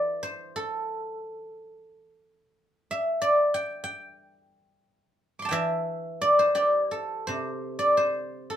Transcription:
Already playing: E3 A4 C5 D5 E5
0.23 C5
0.56 A4
2.91 E5
3.22 D5
3.54 G5
3.84 G5
5.39 C6 D6
5.45 G5 A5
5.51 E3 E5
6.22 D5
6.39 C5
6.55 G4 D5
6.89 A4 C5
7.27 C3 C5
7.79 D5
7.97 C5
8.50 A4

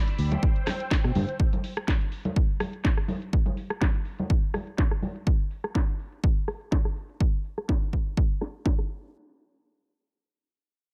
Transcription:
Already playing: D5 B5 E6
0.07 closed hi-hat, shaker
0.18 D2 C5 G5, open hi-hat
0.32 closed hi-hat, high conga, shaker
0.42 kick, shaker
0.56 closed hi-hat, shaker
0.67 cross-stick, snare, open hi-hat, high conga
0.80 closed hi-hat, shaker
0.91 kick, snare
1.04 B2, cross-stick
1.15 G2, open hi-hat, high conga, low conga
1.29 closed hi-hat, shaker
1.40 kick
1.53 closed hi-hat, high conga, shaker
1.64 open hi-hat
1.77 cross-stick, closed hi-hat
1.88 kick, snare, high conga, shaker
2.01 closed hi-hat, shaker
2.12 open hi-hat
2.25 closed hi-hat, high conga, shaker
2.36 kick
2.49 shaker
2.60 cross-stick, open hi-hat, high conga
2.73 closed hi-hat, shaker
2.84 kick, snare
2.97 cross-stick
3.08 open hi-hat, high conga
3.22 closed hi-hat, shaker
3.33 kick
3.46 closed hi-hat, high conga, shaker
3.57 open hi-hat
3.70 cross-stick, closed hi-hat
3.81 kick, snare, high conga, shaker
3.94 closed hi-hat, shaker
4.05 open hi-hat
4.18 closed hi-hat, high conga, shaker
4.30 kick, shaker
4.43 shaker
4.54 cross-stick, open hi-hat, high conga
4.67 closed hi-hat, shaker
4.78 kick, snare
4.91 cross-stick
5.02 open hi-hat, high conga
5.16 closed hi-hat, shaker
5.27 kick
5.40 closed hi-hat
5.51 open hi-hat
5.64 cross-stick, closed hi-hat
5.75 kick, snare
5.88 closed hi-hat
5.99 open hi-hat
6.12 closed hi-hat
6.24 kick
6.48 cross-stick, open hi-hat
6.61 closed hi-hat
6.72 kick, snare
6.85 cross-stick
6.96 open hi-hat
7.09 closed hi-hat
7.20 kick
7.34 closed hi-hat
7.45 open hi-hat
7.58 cross-stick, closed hi-hat
7.69 kick, snare
7.93 kick
8.06 closed hi-hat
8.17 kick
8.41 cross-stick, snare, open hi-hat
8.55 closed hi-hat
8.66 kick, snare
8.79 cross-stick
8.90 open hi-hat
9.03 closed hi-hat

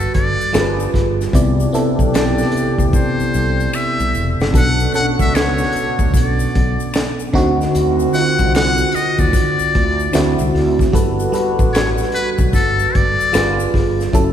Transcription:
Already playing: G3 F#4 A4 B4
0.00 shaker
0.14 G1 D5, kick, closed hi-hat
0.41 shaker
0.53 G1 F3 G3 D4 F4 G#4 A#4, finger snap, snare, closed hi-hat, shaker
0.61 B4
0.80 shaker
0.94 G1, kick, snare, closed hi-hat
1.21 snare, shaker
1.33 C2 C3 E3 B3 D4 E4 G4 D5, kick, closed hi-hat, shaker
1.60 shaker
1.73 B3 C4 E4 A4, closed hi-hat, shaker
1.99 B1, kick, shaker
2.14 D5, finger snap, snare, closed hi-hat, shaker
2.38 snare, shaker
2.52 muted fretless electric bass stroke, closed hi-hat
2.57 shaker
2.78 D2, kick, shaker
2.93 C5, kick, shaker
3.20 muted fretless electric bass stroke, shaker
3.34 C2, shaker
3.60 shaker
3.74 E5, finger snap, shaker
4.00 C2, shaker
4.15 E1, shaker
4.40 F#1, snare, shaker
4.53 B1 B2 B3 D4 F#4 A4 F#5, kick, closed hi-hat, shaker
4.80 shaker
4.93 B2 B3 C#4 A4 F#5, closed hi-hat, shaker
5.01 D4
5.19 C#2 E5, kick, shaker
5.35 C#5, finger snap, snare, closed hi-hat, shaker
5.58 shaker
5.62 snare
5.72 muted fretless electric bass stroke, closed hi-hat, shaker
5.99 D2, kick, shaker
6.14 B1 D5, kick, closed hi-hat, shaker
6.39 shaker
6.55 B1, kick, closed hi-hat
6.80 shaker
6.94 finger snap, snare, closed hi-hat, shaker
7.20 shaker
7.33 D2 D3 D#3 C4 D#4 F#4, kick, snare, closed hi-hat
7.61 snare, shaker
7.75 D2, closed hi-hat, shaker
8.00 shaker
8.13 D3 C4 D#4 F4 F#5, closed hi-hat, shaker
8.22 F#4
8.38 C2, kick, shaker
8.55 F#5, finger snap, snare, closed hi-hat, shaker
8.77 shaker
8.92 D#5, muted fretless electric bass stroke, closed hi-hat
8.96 shaker
9.18 D#2 D5, kick, shaker
9.33 kick, closed hi-hat, shaker
9.59 muted fretless electric bass stroke, shaker
9.75 D2, kick, closed hi-hat
10.00 shaker
10.13 D2 C3 D3 A3 C4 E4 F#4, finger snap, snare, closed hi-hat, shaker
10.39 C2, shaker
10.55 D2, snare, open hi-hat
10.79 kick, snare, shaker
10.93 G1 D3 G3 B3 F#4 A4 B4, kick, closed hi-hat, shaker
11.20 shaker
11.32 G3 F#4 A4 B4, closed hi-hat, shaker
11.59 A1, kick, shaker
11.73 C#5, finger snap, snare, closed hi-hat, shaker
11.98 snare, shaker
12.12 B4, muted fretless electric bass stroke, closed hi-hat, shaker
12.38 B1, kick, shaker
12.53 G1 A4, kick, closed hi-hat, shaker
12.79 shaker
12.95 G1 D5, kick, closed hi-hat
13.20 shaker
13.33 G1 D3 G3 B3 F4 G#4 B4, finger snap, snare, closed hi-hat, shaker
13.60 shaker
13.74 G1, kick, snare, open hi-hat
14.00 snare, shaker
14.13 F#1 C#3 F#3 A3 C#4 E4 A4, kick, closed hi-hat, shaker

